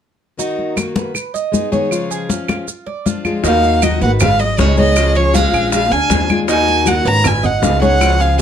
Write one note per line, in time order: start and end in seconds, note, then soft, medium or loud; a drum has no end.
0.38 0.74 D#3 medium
0.38 0.75 A#3 medium
0.38 0.75 D#4 medium
0.38 0.76 D#4 medium
0.38 0.76 F#4 medium
0.38 high conga soft
0.38 maracas medium
0.59 high conga soft
0.76 1.13 D#3 soft
0.76 1.14 A#3 soft
0.76 1.13 D#4 medium
0.76 0.95 F#4 medium
0.76 1.15 F#4 medium
0.76 high conga medium
0.76 claves medium
0.76 maracas medium
0.95 1.33 B4 medium
0.95 high conga medium
0.95 maracas soft
1.14 muted steel-string acoustic guitar stroke medium
1.14 high conga soft
1.14 claves medium
1.14 maracas medium
1.34 1.71 D#5 medium
1.34 high conga soft
1.34 maracas medium
1.52 1.71 G#3 soft
1.52 1.71 B3 medium
1.52 1.71 D#4 soft
1.52 1.71 G#4 medium
1.52 high conga medium
1.52 maracas medium
1.72 1.90 D#3 soft
1.72 1.90 G#3 medium
1.72 1.91 B3 medium
1.72 1.91 D#4 medium
1.72 1.91 G#4 medium
1.72 2.09 C#5 medium
1.72 high conga medium
1.72 maracas soft
1.91 2.29 C#3 medium
1.91 2.28 F3 medium
1.91 2.29 G#3 medium
1.91 2.29 C#4 medium
1.91 2.29 F4 medium
1.91 high conga soft
1.91 claves medium
1.91 maracas medium
2.11 2.29 G#4 medium
2.11 high conga soft
2.11 maracas medium
2.29 2.67 F3 soft
2.29 2.67 G#3 medium
2.29 2.67 C#4 medium
2.29 2.47 F4 medium
2.29 2.67 F4 medium
2.29 high conga medium
2.29 maracas medium
2.48 2.86 F4 medium
2.48 high conga medium
2.48 claves medium
2.48 maracas soft
2.68 muted steel-string acoustic guitar stroke medium
2.68 high conga soft
2.68 maracas medium
2.86 3.05 D5 medium
2.86 high conga soft
3.06 3.24 F3 soft
3.06 3.24 G#3 medium
3.06 3.24 D4 soft
3.06 3.43 F4 medium
3.06 3.24 F4 medium
3.06 high conga medium
3.06 maracas medium
3.25 3.44 F3 soft
3.25 3.44 G#3 medium
3.25 3.44 D4 medium
3.25 3.43 F4 medium
3.25 high conga medium
3.25 claves medium
3.25 maracas soft
3.44 3.97 D#2 medium
3.44 3.81 D#3 medium
3.44 3.82 A#3 medium
3.44 3.81 A#3 medium
3.44 3.81 D#4 medium
3.44 3.82 D#4 medium
3.44 3.82 F#4 medium
3.44 3.84 F5 medium
3.44 high bongo medium
3.44 high conga soft
3.44 maracas medium
3.63 high bongo soft
3.63 high conga soft
3.63 maracas soft
3.82 4.19 D#3 medium
3.82 4.02 F#3 medium
3.82 4.20 A#3 medium
3.82 4.20 D#4 medium
3.82 4.01 F#4 medium
3.82 4.20 F#4 medium
3.82 4.02 D#5 medium
3.82 high bongo medium
3.82 high conga medium
3.82 claves medium
3.82 maracas medium
4.01 4.54 G#1 medium
4.01 4.08 A#3 medium
4.01 4.38 B4 medium
4.01 4.11 F#5 medium
4.01 high bongo soft
4.01 high conga soft
4.01 maracas soft
4.20 4.41 G#3 medium
4.20 4.41 F5 medium
4.20 muted steel-string acoustic guitar stroke medium
4.20 high bongo medium
4.20 high conga soft
4.20 low conga medium
4.20 claves medium
4.20 maracas medium
4.39 4.60 F#3 medium
4.39 4.60 D#5 medium
4.39 4.77 D#5 medium
4.39 high bongo soft
4.39 high conga soft
4.39 maracas soft
4.58 5.48 C#2 loud
4.58 4.77 G#3 medium
4.58 4.78 G#3 medium
4.58 4.77 B3 medium
4.58 4.76 D#4 medium
4.58 4.76 G#4 medium
4.58 4.78 C#5 medium
4.58 high bongo medium
4.58 low bongo medium
4.58 high conga medium
4.58 maracas medium
4.77 4.95 G#3 medium
4.77 5.14 G#3 medium
4.77 4.96 B3 medium
4.77 4.96 D#4 medium
4.77 4.96 G#4 medium
4.77 5.15 C#5 medium
4.77 5.18 D#5 loud
4.77 high conga medium
4.77 maracas soft
4.95 5.33 C#3 medium
4.95 5.33 F3 medium
4.95 5.34 G#3 medium
4.95 5.34 C#4 medium
4.95 5.34 F4 medium
4.95 high bongo medium
4.95 high conga soft
4.95 claves medium
4.95 maracas medium
5.15 5.36 F3 medium
5.15 5.34 G#4 medium
5.15 5.37 C#5 medium
5.15 high bongo soft
5.15 high conga soft
5.15 maracas soft
5.34 5.72 F3 medium
5.34 5.72 G#3 medium
5.34 5.73 G#3 medium
5.34 5.72 C#4 medium
5.34 5.53 F4 medium
5.34 5.72 F4 medium
5.34 5.72 F5 medium
5.34 high bongo medium
5.34 high conga medium
5.34 maracas medium
5.53 5.89 A#1 medium
5.53 5.91 G#4 medium
5.53 high bongo soft
5.53 high conga soft
5.53 claves medium
5.53 maracas soft
5.72 5.93 G#3 medium
5.72 5.93 F5 medium
5.72 muted steel-string acoustic guitar stroke medium
5.72 high bongo medium
5.72 high conga soft
5.72 maracas medium
5.91 6.09 D2 medium
5.91 6.30 D4 medium
5.91 6.10 F5 medium
5.91 6.30 G#5 loud
5.91 high conga soft
5.91 maracas soft
6.10 7.00 D#2 loud
6.10 6.29 F3 medium
6.10 6.29 G#3 medium
6.10 6.29 D4 medium
6.10 6.29 F4 medium
6.10 6.48 G#4 medium
6.10 high bongo medium
6.10 low bongo medium
6.10 high conga medium
6.10 maracas medium
6.29 6.48 G#3 medium
6.29 6.48 D4 medium
6.29 6.48 F4 medium
6.29 high bongo soft
6.29 high conga medium
6.29 claves medium
6.29 maracas soft
6.48 6.84 D#3 medium
6.48 6.85 A#3 medium
6.48 6.86 D#4 medium
6.48 6.88 D#4 medium
6.48 6.86 F#4 medium
6.48 6.89 G#5 loud
6.48 high bongo medium
6.48 high conga soft
6.48 maracas medium
6.67 high bongo soft
6.67 high conga soft
6.67 maracas soft
6.85 7.23 D#3 medium
6.85 7.24 A#3 medium
6.85 7.07 A#3 medium
6.85 7.24 D#4 medium
6.85 7.05 F#4 medium
6.85 7.24 F#4 medium
6.85 7.09 F#5 medium
6.85 high bongo medium
6.85 high conga medium
6.85 claves medium
6.85 maracas medium
7.05 7.59 G#1 medium
7.05 7.26 C#4 medium
7.05 7.43 B4 medium
7.05 7.29 A#5 loud
7.05 high bongo soft
7.05 high conga soft
7.05 maracas soft
7.24 7.44 B3 medium
7.24 7.47 G#5 medium
7.24 muted steel-string acoustic guitar stroke medium
7.24 high bongo medium
7.24 high conga soft
7.24 low conga medium
7.24 claves medium
7.24 maracas medium
7.43 7.63 A#3 medium
7.43 7.80 D#5 medium
7.43 7.65 F#5 medium
7.43 high bongo soft
7.43 high conga soft
7.43 low conga medium
7.43 maracas soft
7.62 8.41 C#2 loud
7.62 7.81 G#3 medium
7.62 7.82 G#3 medium
7.62 7.81 B3 medium
7.62 7.81 D#4 medium
7.62 7.80 G#4 medium
7.62 7.82 F5 medium
7.62 high bongo medium
7.62 low bongo medium
7.62 high conga medium
7.62 maracas medium
7.82 8.00 G#3 medium
7.82 8.01 B3 medium
7.82 8.21 C#4 medium
7.82 8.00 D#4 medium
7.82 8.00 G#4 medium
7.82 8.19 C#5 medium
7.82 8.22 F#5 loud
7.82 high conga medium
7.82 maracas soft
8.01 8.38 C#3 medium
8.01 8.38 F3 medium
8.01 8.38 G#3 medium
8.01 8.38 C#4 medium
8.01 8.39 F4 medium
8.01 high bongo medium
8.01 high conga soft
8.01 claves medium
8.01 maracas medium
8.20 8.39 G#3 medium
8.20 8.38 G#4 medium
8.20 8.39 F5 medium
8.20 high bongo soft
8.20 high conga soft
8.20 maracas soft